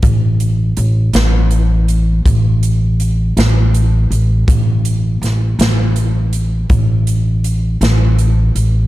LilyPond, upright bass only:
\new Staff \with { instrumentName = "Upright bass" } { \clef bass \time 12/8 \key c \major \tempo 4. = 54 a,,4 a,,8 a,,4. a,,4. a,,4 a,,8 | a,,4 a,,8 a,,4. a,,4. a,,4 a,,8 | }